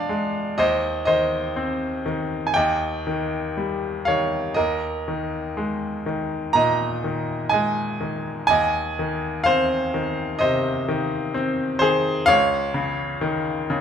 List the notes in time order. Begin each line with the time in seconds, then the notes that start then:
Already playing: A#2 F3 G#3 D4 D5 F5 G5
0.09 G#3
0.58 D#2 C5 D#5
1.05 D#3 C5 D#5
1.56 C4
2.06 D#3
2.47 G#5
2.54 D#2 D#5 G5
3.07 D#3
3.57 G3
4.05 D#3 C#5 F5
4.54 D#2 A#4 D#5
5.08 D#3
5.57 G#3
6.06 D#3
6.53 A#2 D#5 A#5
7.04 D#3
7.49 G#3 D#5 G#5
8.01 D#3
8.47 D#2 D#5 G#5
8.99 D#3
9.44 C4 C5 F5
9.94 D#3
10.39 C3 C5 D#5
10.89 D#3
11.34 C4
11.79 D#3 G#4 C5
12.26 C#2 C#5 F5
12.74 C#3
13.21 D#3
13.70 C#3